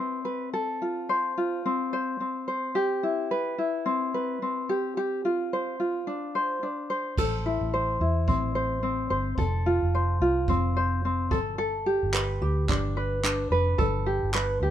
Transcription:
Already playing: C4 E4 G4 B4
0.25 B4
0.54 A4
0.82 F4
1.09 C5
1.38 F4
1.66 C4
1.93 C5
2.20 C4
2.48 C5
2.75 G4
3.03 E4
3.31 B4
3.58 E4
3.86 C4
4.14 B4
4.42 C4
4.69 G4
4.97 G4
5.25 F4
5.53 C5
5.80 F4
6.07 D4
6.35 C5
6.63 D4
6.90 C5
7.18 A1 A4, kick, crash
7.46 E4
7.61 A1
7.74 C5
8.00 E2 E4
8.27 A1 C4, kick
8.55 C5
8.83 C4
9.10 G1 C5
9.37 F1 A4, kick
9.66 F4
9.83 F1
9.95 C5
10.20 C2 F4
10.48 F1 C4, kick
10.77 C5
11.05 C4
11.31 G1 A4, kick
11.58 A4
11.86 G4
12.03 G1
12.13 B4, clap
12.41 D2 G4
12.69 G1 D4, kick, clap
12.97 B4
13.24 D4, clap
13.51 F1 B4
13.78 G1 A4, kick
14.06 G4
14.23 G1
14.34 B4, clap
14.60 D2 G4

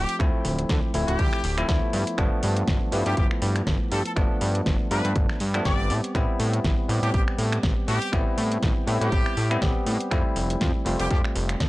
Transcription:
Already playing: F3 A3 C4 F4 G4
0.09 closed hi-hat
0.19 D2 F3 A3 C4 E4, finger snap, kick, closed hi-hat
0.45 D1, open hi-hat
0.59 closed hi-hat
0.69 D2, kick, snare, closed hi-hat
0.94 D1 F3 A3 C4 E4, open hi-hat
1.08 D1 G4, closed hi-hat
1.19 D2, kick, closed hi-hat
1.33 finger snap
1.44 D1, open hi-hat
1.57 F3 A3 C4 E4, finger snap, closed hi-hat
1.68 D2 F3 A3 B3 E4, kick, snare, closed hi-hat
1.93 G2, open hi-hat
2.07 closed hi-hat
2.17 G1 F3 A3 B3 D4, finger snap, kick, closed hi-hat
2.43 G2, open hi-hat
2.56 closed hi-hat
2.67 G1, kick, snare, closed hi-hat
2.91 G2 F3 A3 B3 E4, open hi-hat
3.06 G2 G4, closed hi-hat
3.17 G1 G4, kick, closed hi-hat
3.31 finger snap
3.42 G2, open hi-hat
3.56 finger snap, closed hi-hat
3.67 G1, kick, snare, closed hi-hat
3.92 G2 A4, open hi-hat
4.05 A4, closed hi-hat
4.16 G1 F3 A3 B3 D4, finger snap, kick, closed hi-hat
4.41 G2, open hi-hat
4.55 closed hi-hat
4.66 G1, kick, snare, closed hi-hat
4.91 G2 F3 A3 B3 D4 B4, open hi-hat
5.05 G2, closed hi-hat
5.16 G1, kick, closed hi-hat
5.29 finger snap, snare
5.40 G2, open hi-hat
5.54 F3 A3 B3 D4, finger snap, closed hi-hat
5.65 G1 G3 B3 C4 G4 D5, kick, snare, closed hi-hat
5.90 A2, open hi-hat
6.04 closed hi-hat
6.14 A1 G3 B3 C4 E4, finger snap, kick, closed hi-hat
6.40 A2, open hi-hat
6.53 closed hi-hat
6.64 A1, kick, snare, closed hi-hat
6.88 A2 G3 B3 C4 G4, open hi-hat
7.03 A2 G4, closed hi-hat
7.14 A1 G4, kick, closed hi-hat
7.28 finger snap
7.38 A2, open hi-hat
7.52 finger snap, closed hi-hat
7.63 A1, kick, snare, closed hi-hat
7.88 A2 G4, open hi-hat
8.02 closed hi-hat
8.12 A1 G3 B3 C4 E4, finger snap, kick, closed hi-hat
8.38 A2, open hi-hat
8.52 closed hi-hat
8.63 A1, kick, snare, closed hi-hat
8.87 A2 G3 B3 C4 E4, open hi-hat
9.01 A2 G4, closed hi-hat
9.12 A1, kick, closed hi-hat
9.26 finger snap
9.37 A2, open hi-hat
9.50 G3 B3 C4 E4, finger snap, closed hi-hat
9.61 A1 G3 B3 C4 G4, kick, snare, closed hi-hat
9.86 A2, open hi-hat
10.00 closed hi-hat
10.11 F2 G3 A3 C4 E4, finger snap, kick, closed hi-hat
10.36 F1, open hi-hat
10.50 closed hi-hat
10.61 F2, kick, snare, closed hi-hat
10.85 F1 G3 A3 C4 F4, open hi-hat
10.99 F1 G4, closed hi-hat
11.10 F2 G4, kick, closed hi-hat
11.24 finger snap
11.36 F1, open hi-hat
11.49 finger snap, closed hi-hat
11.60 F2, kick, snare, closed hi-hat

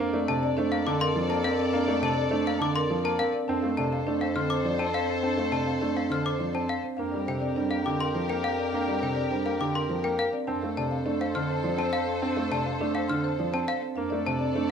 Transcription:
0.00 F2 A#3 D4 A4 D5 F5
0.14 A3 D5
0.28 C3 A4 C5 A5
0.42 C4 D5
0.57 A3 D4 C5
0.72 A#3 A#4 F5
0.86 D3 A4 A5 D6
1.00 A#4 F5 C6
1.15 F3 C5
1.29 A#3 A#4 A5
1.44 C4 A#4 F5
1.59 C4 D5
1.73 A#3 D4 F5
1.88 A3 D5
2.02 C3 A4 C5 A5
2.15 C4 D5
2.30 A3 D4 C5
2.45 A#3 A#4 F5
2.59 D3 A4 A5 D6
2.74 A#4 F5 C6
2.89 F3 C5
3.03 A#3 A#4 A5
3.19 C4 A#4 F5
3.33 C4 D5
3.48 F2 C4 D4 A4 C5 A5
3.62 A3 F5
3.77 C3 A4 D5 A5
3.92 C4 F5
4.07 A3 D4 D5
4.21 C4 C5 F5
4.36 D3 A4 C6 F6
4.50 C5 A5 D6
4.65 F3 D5
4.79 C4 C5 A5
4.94 C5 F5 A5
5.09 C4 F5
5.23 C4 D4 A5
5.37 A3 F5
5.51 C3 A4 D5 A5
5.67 C4 F5
5.81 A3 D4 D5
5.96 C4 C5 F5
6.10 D3 A4 C6 F6
6.24 C5 A5 D6
6.38 F3 D5
6.53 C4 C5 A5
6.68 C5 F5 A5
6.83 C4 F5
6.97 F2 A#3 D4 G4 A#4 F5
7.12 G3 D5
7.26 C3 G4 C5 G5
7.40 C4 D5
7.55 G3 D4 C5
7.70 A#3 A#4 F5
7.84 D3 G4 G5 D6
7.99 A#4 F5 C6
8.14 F3 C5
8.28 A#3 A#4 G5
8.44 A#4 F5
8.58 C4 D5
8.73 A#3 D4 F5
8.87 G3 D5
9.00 C3 G4 C5 G5
9.15 C4 D5
9.31 G3 D4 C5
9.45 A#3 A#4 F5
9.59 D3 G4 G5 D6
9.74 A#4 F5 C6
9.89 F3 C5
10.04 A#3 A#4 G5
10.18 A#4 F5
10.33 C4 D5
10.47 F2 C4 D4 A4 C5 A5
10.62 A3 F5
10.77 C3 D5 A5
10.91 C4 F5
11.06 A3 D4 D5
11.20 C4 C5 F5
11.35 D3 A4 C6 F6
11.49 C5 A5
11.63 F3 D5
11.78 C4 C5 A5
11.92 C5 F5 A5
12.08 C4 F5
12.22 C4 D4 A5
12.36 A3 F5
12.51 C3 D5 A5
12.66 C4 F5
12.81 A3 D4 D5
12.94 C4 C5 F5
13.08 D3 A4 C6 F6
13.24 C5 A5
13.39 F3 D5
13.53 C4 C5 A5
13.67 C5 F5 A5
13.81 C4 F5
13.96 F2 A#3 D4 A4 D5 F5
14.10 A3 D5
14.26 C3 C5 A5
14.39 C4 D5
14.53 A3 D4 C5

